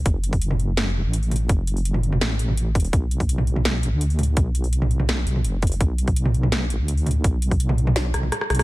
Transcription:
<<
  \new Staff \with { instrumentName = "Wobble bass" } { \clef bass \time 4/4 \key b \dorian \tempo 4 = 167 fis,,2~ fis,,8 e,,16 a,,4~ a,,16 | fis,,2 a,,4. e,,8 | b,,2~ b,,8 a,,16 d,4~ d,16 | b,,2~ b,,8 b,,8 fis,,4 |
b,,2~ b,,8 a,,16 d,4~ d,16 | b,,2~ b,,8 b,,8 r8 b,,8 | }
  \new DrumStaff \with { instrumentName = "Drums" } \drummode { \time 4/4 <hh bd>8 hh16 <hho bd>16 hh16 toml16 hh8 <hh sn>4 hh16 hho16 <hh toml>32 hh16. | <hh bd>8 hh16 hho16 hh16 toml16 hh16 toml16 <hh sn>8 hh16 toml16 hh8 <hh bd>32 hh32 hho16 | <hh bd>8 hh16 <hho bd>16 hh16 toml16 hh16 toml16 <hh sn>8 hh8 hh16 hho16 <hh toml>32 hh16. | <hh bd>8 hh16 hho16 hh16 toml16 hh16 toml16 <hh sn>8 hh16 toml16 hh8 <hh bd>32 hh32 hho16 |
<hh bd>8 hh16 <hho bd>16 hh16 toml16 hh16 toml16 <hh sn>8 hh8 hh16 hho16 <hh toml>32 hh16. | <hh bd>8 hh16 <hho bd>16 hh16 toml16 hh16 toml16 <hh sn>8 <hh ss>16 toml16 <hh ss>16 ss16 <hh ss>32 hh32 <hho ss>16 | }
>>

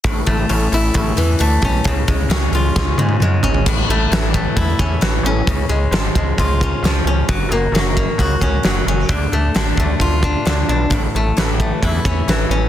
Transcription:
<<
  \new Staff \with { instrumentName = "Steel-string acoustic guitar" } { \time 4/4 \key a \major \tempo 4 = 132 a,8 a8 cis'8 e'8 cis'8 e8 a8 cis'8 | cis8 gis8 cis'8 eis'8 cis'8 cis8 gis8 cis'8 | a,8 a8 e8 a8 e'8 cis'8 e8 cis'8 | cis8 gis8 eis8 gis8 eis'8 cis'8 eis8 cis'8 |
fis8 ais8 fis8 ais8 fis'8 cis'8 fis8 cis'8 | d8 a8 d8 a8 f'8 d'8 d8 d'8 | a,8 a8 e8 a8 e'8 cis'8 e8 cis'8 | }
  \new Staff \with { instrumentName = "Analog synth bass" } { \clef bass \time 4/4 \key a \major a,,8 a,,8 a,,8 a,,8 a,,8 e,8 d,8 b,,8 | cis,8 cis,8 cis,8 cis,8 cis,8 gis,8 fis,8 gis,,8 | a,,8 a,,8 a,,4 e,8 e,8 a,,8 a,,8 | cis,8 cis,8 gis,,8 cis,8 cis,4 cis,8 cis,8 |
fis,,8 fis,,8 fis,,4 cis,8 cis,8 fis,,8 fis,,8 | d,8 d,8 a,,8 d,8 d,4 d,8 b,,8 | a,,8 a,,8 a,,4 e,8 e,8 a,,8 a,,8 | }
  \new DrumStaff \with { instrumentName = "Drums" } \drummode { \time 4/4 <hho bd>8 <hho bd>8 hho8 hho8 <hho bd>8 hho8 hho8 <hho bd>8 | <hho bd>8 <hho bd>8 <hho sn>8 hho8 <bd sn>8 tommh16 tommh16 toml8 tomfh16 tomfh16 | <cymc bd>4 <hho sn>8 bd8 <hho bd>8 bd8 <hho sn>4 | <hho bd>4 <hho sn>8 bd8 <hho bd>8 bd8 <hho sn>4 |
<hho bd>4 <hho sn>8 bd8 <hho bd>8 bd8 <hho sn>4 | <hho bd>4 <hho sn>8 bd8 <hho bd>8 bd8 <hho sn>4 | <hho bd>4 <hho sn>8 bd8 <hho bd>8 bd8 <hho sn>4 | }
>>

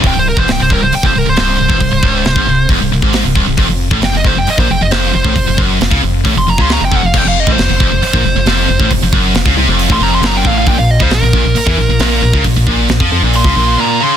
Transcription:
<<
  \new Staff \with { instrumentName = "Lead electric guitar" } { \time 4/4 \tempo 4 = 135 g''16 c''16 bes'16 c''16 g''16 c''16 bes'16 c''16 g''16 c''16 bes'16 c''16 c''4~ | c''2 r2 | r4 g''16 ees''16 c''16 g''16 ees''16 c''16 g''16 ees''16 c''8 c''8~ | c''8 r4. r16 c'''16 bes''16 c'''16 bes''16 g''16 fis''16 f''16 |
g''16 f''16 ees''16 c''16 c''2. | r2 r16 c'''16 bes''16 c'''16 bes''16 g''16 f''16 f''16 | g''16 f''16 ees''16 c''16 bes'2. | r2 c'''4 bes''8 c'''8 | }
  \new Staff \with { instrumentName = "Distorted electric guitar" } { \clef bass \time 4/4 c,16 c,8 e,16 c,16 c,16 c,16 c,16 r16 f,16 c,16 c,16 c,8 c,16 e,16 | c,16 c,16 des,8 c,16 aes,16 c,8 e,16 c,16 c,16 aes,8 c,16 c,16 c,16 | f,16 f,8 a,16 f,16 f,16 f,16 f,16 r16 bes,16 f,16 f,16 f,8 f,16 a,16 | f,16 f,16 fis,8 f,16 des16 f,8 a,16 f,16 f,16 des8 f,16 f,16 f,16 |
f,16 f,8 a,16 f,16 f,16 f,16 f,16 r16 bes,16 f,16 f,16 f,8 f,16 a,16 | f,16 f,16 fis,8 f,16 des16 c16 f,8 a,16 f,8 fis,8 a,8 | bes,16 bes,8 des16 bes,16 bes,16 bes,16 bes,16 r16 e16 bes,16 bes,16 bes,8 bes,16 des16 | bes,16 bes,16 bes,8 bes,16 f16 f16 bes,8 des16 bes,8 bes,8 des8 | }
  \new Staff \with { instrumentName = "Distorted electric guitar" } { \clef bass \time 4/4 c,16 c,8 e,16 c,16 c,16 c,16 c,16 r16 f,16 c,16 c,16 c,8 c,16 e,16 | c,16 c,16 des,8 c,16 aes,16 c,8 e,16 c,16 c,16 aes,8 c,16 c,16 c,16 | f,16 f,8 a,16 f,16 f,16 f,16 f,16 r16 bes,16 f,16 f,16 f,8 f,16 a,16 | f,16 f,16 fis,8 f,16 des16 f,8 a,16 f,16 f,16 des8 f,16 f,16 f,16 |
f,16 f,8 a,16 f,16 f,16 f,16 f,16 r16 bes,16 f,16 f,16 f,8 f,16 a,16 | f,16 f,16 fis,8 f,16 des16 c16 f,8 a,16 f,8 fis,8 a,8 | bes,16 bes,8 des16 bes,16 bes,16 bes,16 bes,16 r16 e16 bes,16 bes,16 bes,8 bes,16 des16 | bes,16 bes,16 bes,8 bes,16 f16 f16 bes,8 des16 bes,8 bes,8 des8 | }
  \new Staff \with { instrumentName = "FM bass" } { \clef bass \time 4/4 c,,16 c,,8 e,,16 c,,16 c,,16 c,,16 c,,16 c,,16 f,,16 c,,16 c,,16 c,,8 c,,16 e,,16 | c,,16 c,,16 des,,8 c,,16 aes,,16 c,,8 e,,16 c,,16 c,,16 aes,,8 c,,16 c,,16 c,,16 | f,,16 f,,8 a,,16 f,,16 f,,16 f,,16 f,,16 f,,16 bes,,16 f,,16 f,,16 f,,8 f,,16 a,,16 | f,,16 f,,16 fis,,8 f,,16 des,16 f,,8 a,,16 f,,16 f,,16 des,8 f,,16 f,,16 f,,16 |
f,,16 f,,8 a,,16 f,,16 f,,16 f,,16 f,,16 f,,16 bes,,16 f,,16 f,,16 f,,8 f,,16 a,,16 | f,,16 f,,16 fis,,8 f,,16 des,16 c,16 f,,8 a,,16 f,,8 fis,,8 a,,8 | bes,,16 bes,,8 des,16 bes,,16 bes,,16 bes,,16 bes,,16 bes,,16 e,16 bes,,16 bes,,16 bes,,8 bes,,16 des,16 | bes,,16 bes,,16 bes,,8 bes,,16 f,16 f,16 bes,,8 des,16 bes,,8 r4 | }
  \new DrumStaff \with { instrumentName = "Drums" } \drummode { \time 4/4 <hho bd>8. bd16 <hho sn>8 bd8 hho16 bd8. <hho sn>8. bd16 | <hho bd>8 bd8 <hho sn>16 bd8. <hho bd>8. bd16 <hho sn>8 bd8 | <hho bd>8. bd16 <hho sn>8 bd8 hho16 bd8. <hho sn>8. bd16 | <hho bd>8 bd8 <hho sn>16 bd8. <hho bd>8. bd16 <hho sn>8 bd8 |
<cymc bd>8. bd16 <hho sn>8 bd8 hho16 bd8. <hho sn>8. bd16 | <hho bd>8 bd8 <hho sn>16 bd8. hho16 bd8. <hho sn>8 bd8 | <hho bd>8. bd16 <hho sn>8 bd8 hho16 bd8. <hho sn>8. bd16 | <hho bd>8 bd8 <hho sn>16 bd8. hho16 bd8. r4 | }
>>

